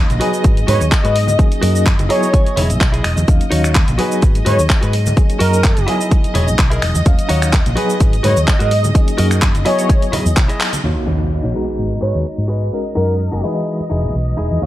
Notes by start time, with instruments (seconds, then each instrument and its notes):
Already playing: reed electric piano F#3 A#3 C#4 D#4 F5, string machine D#5
0.10 fingered electric bass A#1, closed hi-hat, high conga, shaker
0.20 reed electric piano F#3 B3 D#4 G#4, clean electric guitar F#4 G#4 B4, open hi-hat
0.34 shaker
0.44 fingered electric bass G#1, kick, closed hi-hat, shaker
0.57 closed hi-hat, shaker
0.67 fingered electric bass G#2, clean electric guitar F#4 G#4 B4, analog polysynth C#5, open hi-hat, high conga, low conga, shaker
0.81 fingered electric bass D#2, shaker
0.92 analog polysynth D#5, kick, clap, closed hi-hat, shaker
1.04 fingered electric bass G#2, clean electric guitar F#4 G#4 B4, closed hi-hat, shaker
1.16 open hi-hat
1.27 muted clean electric guitar stroke, high conga, shaker
1.38 reed electric piano F#3 A#3 C#4 D#4 G#4, kick, closed hi-hat, shaker
1.52 closed hi-hat, shaker
1.61 fingered electric bass F#2, clean electric guitar F#4 A#4 D#5, open hi-hat
1.76 shaker
1.86 kick, clap, closed hi-hat, shaker
1.99 fingered electric bass F#1, closed hi-hat, high conga, shaker
2.09 reed electric piano F#3 B3 E4 G#4, clean electric guitar E4 G#4 D#5 A#5, analog polysynth C#5, open hi-hat
2.23 shaker
2.33 clean electric guitar G#5, kick, closed hi-hat, shaker
2.46 muted fingered electric bass stroke, closed hi-hat, shaker
2.56 fingered electric bass E1, clean electric guitar E4 G#4 C#5 E5, open hi-hat, high conga, low conga, shaker
2.69 fingered electric bass B1, closed hi-hat, shaker
2.80 fingered electric bass B1, clean electric guitar D#5, muted clean electric guitar stroke, kick, clap, closed hi-hat, shaker
2.92 clean electric guitar E4 G#4 D#5, closed hi-hat, shaker
3.04 fingered electric bass E1, clean electric guitar D#5, finger snap, open hi-hat
3.16 fingered electric bass E2, muted clean electric guitar stroke, high conga, shaker
3.28 fingered electric bass D#2, reed electric piano F#3 A#3 C#4 D#4 F5, string machine D#5, kick, closed hi-hat, shaker
3.41 closed hi-hat, shaker
3.51 fingered electric bass D#2, clean electric guitar D#4 F#4 C#5, open hi-hat
3.64 finger snap, shaker
3.75 kick, clap, closed hi-hat, shaker
3.87 fingered electric bass A#1, closed hi-hat, high conga, shaker
3.98 reed electric piano F#3 B3 D#4 G#4, clean electric guitar F#4 G#4 B4, open hi-hat
4.12 shaker
4.22 fingered electric bass G#1, kick, closed hi-hat, shaker
4.35 closed hi-hat, shaker
4.45 fingered electric bass G#2, clean electric guitar F#4 G#4 B4, analog polysynth C#5, open hi-hat, high conga, low conga, shaker
4.59 fingered electric bass D#2, shaker
4.70 kick, clap, closed hi-hat, shaker
4.81 fingered electric bass G#2, clean electric guitar F#4 G#4 B4, closed hi-hat, shaker
4.93 open hi-hat, shaker
5.05 muted clean electric guitar stroke, high conga, shaker
5.17 reed electric piano F#3 A#3 C#4 D#4 G#4, kick, closed hi-hat, shaker
5.30 closed hi-hat, shaker
5.39 fingered electric bass F#2, clean electric guitar F#4 A#4 D#5, analog polysynth A#4, open hi-hat, shaker
5.54 shaker
5.64 kick, clap, closed hi-hat, shaker
5.77 fingered electric bass F#1, closed hi-hat, high conga, shaker
5.87 reed electric piano F#3 B3 E4 G#4 D#5, clean electric guitar E4 G#4 D#5, open hi-hat, shaker
6.01 shaker
6.11 kick, closed hi-hat, shaker
6.24 muted fingered electric bass stroke, closed hi-hat, shaker
6.34 fingered electric bass E1, clean electric guitar E4 G#4 C#5, open hi-hat, high conga, low conga, shaker
6.48 fingered electric bass B1, shaker
6.59 kick, clap, closed hi-hat, shaker
6.70 clean electric guitar E4 G#4 A#4, closed hi-hat, shaker
6.82 fingered electric bass E1, finger snap, open hi-hat, shaker
6.94 fingered electric bass E2, muted clean electric guitar stroke, high conga, shaker
7.05 fingered electric bass D#2, reed electric piano F#3 A#3 C#4 D#4 F5, kick, closed hi-hat, shaker
7.19 closed hi-hat, shaker
7.29 fingered electric bass D#2, clean electric guitar D#4 F#4 C#5, open hi-hat, shaker
7.42 finger snap, shaker
7.53 kick, clap, closed hi-hat, shaker
7.66 fingered electric bass A#1, closed hi-hat, high conga, shaker
7.76 reed electric piano F#3 B3 D#4 G#4, clean electric guitar F#4 G#4 B4, open hi-hat, shaker
7.90 shaker
8.00 fingered electric bass G#1, kick, closed hi-hat, shaker
8.13 closed hi-hat, shaker
8.23 fingered electric bass G#2, clean electric guitar F#4 G#4 B4, analog polysynth C#5, open hi-hat, high conga, low conga, shaker
8.37 fingered electric bass D#2, shaker
8.48 analog polysynth D#5, kick, clap, closed hi-hat, shaker
8.59 fingered electric bass G#2, clean electric guitar F#4 G#4 A#4, closed hi-hat, shaker
8.71 open hi-hat, shaker
8.83 muted clean electric guitar stroke, high conga, shaker
8.94 reed electric piano F#3 A#3 C#4 D#4 G#4, kick, closed hi-hat, shaker
9.08 closed hi-hat, shaker
9.18 fingered electric bass F#2, clean electric guitar F#4 A#4 D#5, open hi-hat, shaker
9.31 finger snap, closed hi-hat, shaker
9.42 kick, clap, closed hi-hat, shaker
9.55 fingered electric bass F#1, closed hi-hat, high conga, shaker
9.65 reed electric piano F#3 B3 E4 G#4 D#5, clean electric guitar E4 G#4 D#5, analog polysynth C#5, open hi-hat, shaker
9.79 closed hi-hat, shaker
9.89 kick, closed hi-hat, shaker
10.02 closed hi-hat, shaker
10.12 clean electric guitar E4 G#4 D#5, open hi-hat, high conga, low conga, shaker
10.26 fingered electric bass E2, shaker
10.37 fingered electric bass B1, kick, clap, closed hi-hat, shaker
10.48 clean electric guitar E4 G#4 D#5, closed hi-hat, shaker
10.60 clap, open hi-hat, shaker
10.72 muted clean electric guitar stroke, closed hi-hat, high conga, shaker
10.83 fingered electric bass D#2, reed electric piano A#3 D#4 F#4 C#5 F5, string machine D#5, impact
11.07 fingered electric bass D#2, clean electric guitar D#4 F#4 C#5
11.43 fingered electric bass A#1, clean electric guitar D#4 F#4 C#5
11.54 reed electric piano G#3 B3 D#4 F#4 A#5, clean electric guitar F#4 G#4 B4
11.79 fingered electric bass G#1
12.01 fingered electric bass G#2, clean electric guitar F#4 G#4 B4, analog polysynth C#5
12.15 fingered electric bass D#2
12.38 fingered electric bass G#2
12.48 clean electric guitar F#4 G#4 B4
12.72 reed electric piano G#3 C#4 D#4 F#4 A#4
12.95 fingered electric bass F#2, clean electric guitar D#4 F#4 A#4, analog polysynth A#4
13.32 fingered electric bass F#1, clean electric guitar D#4 F#4 A#4
13.43 reed electric piano E3 G#3 F#4 B4 D#5, clean electric guitar D#4 E4 G#4
13.80 muted fingered electric bass stroke
13.90 fingered electric bass E1, clean electric guitar D#4 E4 G#4
14.04 fingered electric bass B1
14.15 fingered electric bass B1
14.37 fingered electric bass E1, clean electric guitar D#4 E4 G#4
14.51 fingered electric bass E2
14.61 fingered electric bass D#2, reed electric piano A#3 D#4 F#4 C#5 F5